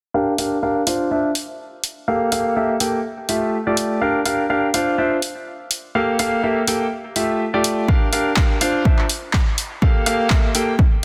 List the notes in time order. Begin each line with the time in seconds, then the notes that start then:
0.14 D4 G4 A#4 F5
0.38 D4 G4 A#4 F5, open hi-hat
0.63 D4 G4 A#4 F5
0.87 D4 F4 C5 F5, open hi-hat
1.11 D4 F4 C5 E5
1.35 open hi-hat
1.84 open hi-hat
2.08 A#3 G4 A4 F5
2.32 A#3 G4 A4 F5, open hi-hat
2.56 A#3 G4 A4 E5
2.80 A#3 G4 A4 G5, open hi-hat
3.29 A3 F4 G4 E5, open hi-hat
3.67 A3 F4 G4 D5
3.77 open hi-hat
4.01 D4 G4 A#4 F5
4.26 D4 G4 A#4 F5, open hi-hat
4.50 D4 G4 A#4 F5
4.74 D4 F4 C5 F5, open hi-hat
4.98 D4 F4 C5 E5
5.22 open hi-hat
5.71 open hi-hat
5.95 A#3 G4 A4 F5
6.19 A#3 G4 A4 F5, open hi-hat
6.43 A#3 G4 A4 E5
6.68 A#3 G4 A4 G5, open hi-hat
7.16 A3 F4 G4 E5, open hi-hat
7.54 A3 F4 G4 D5
7.64 open hi-hat
7.88 D4 G4 A#4 F5, kick
8.13 D4 G4 A#4 F5, open hi-hat
8.36 D4 A#4 F5, kick, clap
8.61 D4 F4 C5 F5, open hi-hat
8.85 C5 E5, kick
8.99 clap
9.09 open hi-hat
9.33 kick, clap
9.58 open hi-hat
9.82 A#3 G4 A4 F5, kick
10.06 A#3 G4 A4 F5, open hi-hat
10.30 A4 E5, kick, clap
10.55 A#3 G4 A4 G5, open hi-hat
10.79 kick